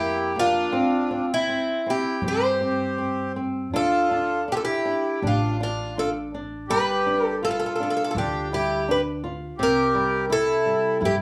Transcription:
Already playing: upright bass F2, accordion E4, twelve-string acoustic guitar G4
0.00 nylon-string guitar A#3
0.36 nylon-string guitar A#3, accordion D4, twelve-string acoustic guitar F4
0.72 upright bass C2, nylon-string guitar C4
1.11 nylon-string guitar C4
1.31 accordion C4, twelve-string acoustic guitar E4
1.49 nylon-string guitar C4
1.86 nylon-string guitar C4, accordion E4, twelve-string acoustic guitar G4
2.22 upright bass G2, nylon-string guitar C4, accordion G4
2.28 twelve-string acoustic guitar C5
2.61 nylon-string guitar C4
2.98 nylon-string guitar C4
3.36 nylon-string guitar C4
3.73 upright bass D2, nylon-string guitar D4, accordion F4, twelve-string acoustic guitar A4
4.11 nylon-string guitar D4
4.48 nylon-string guitar D4, accordion D4
4.52 accordion F4, twelve-string acoustic guitar G4
4.57 twelve-string acoustic guitar A4
4.63 accordion E4, twelve-string acoustic guitar G4
4.85 nylon-string guitar D4
5.22 upright bass A1, accordion D4, nylon-string guitar D4
5.27 twelve-string acoustic guitar F4
5.60 accordion D4, nylon-string guitar D4, twelve-string acoustic guitar F4
5.96 nylon-string guitar D4, accordion F4, twelve-string acoustic guitar A4
6.34 nylon-string guitar D4
6.68 upright bass G1, nylon-string guitar G3, accordion G4, twelve-string acoustic guitar B4
7.06 nylon-string guitar D4
7.26 twelve-string acoustic guitar A4
7.42 accordion F4, nylon-string guitar F4, twelve-string acoustic guitar A4
7.51 twelve-string acoustic guitar A4
7.60 twelve-string acoustic guitar A4
7.66 twelve-string acoustic guitar A4
7.76 twelve-string acoustic guitar A4
7.80 nylon-string guitar D4, twelve-string acoustic guitar A4
7.90 twelve-string acoustic guitar A4
7.97 twelve-string acoustic guitar A4
8.04 accordion F4, twelve-string acoustic guitar A4
8.11 twelve-string acoustic guitar A4
8.15 upright bass D2, accordion D4, nylon-string guitar F4, twelve-string acoustic guitar G4
8.52 nylon-string guitar G3, accordion E4, twelve-string acoustic guitar G4
8.87 nylon-string guitar D4, accordion G4, twelve-string acoustic guitar B4
9.24 nylon-string guitar F4
9.58 upright bass C2, nylon-string guitar C3, accordion G4
9.63 twelve-string acoustic guitar A#4
9.95 nylon-string guitar G3
10.30 accordion E4, nylon-string guitar E4, twelve-string acoustic guitar A4
10.66 nylon-string guitar G3
11.01 upright bass G2, nylon-string guitar E4, accordion E4
11.05 twelve-string acoustic guitar G4

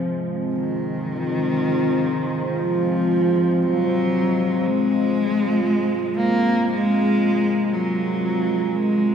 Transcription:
Already playing: ambient pad G#3 C4 F4, synth drone G#3, singing bowl C4 C5
0.08 ambient pad C5
0.53 cello D#3
2.59 cello F3
3.62 cello F#3
4.66 cello G#3
6.17 cello A#3
6.55 ambient pad A#4
6.72 cello G#3
7.73 cello F#3
8.75 cello G#3

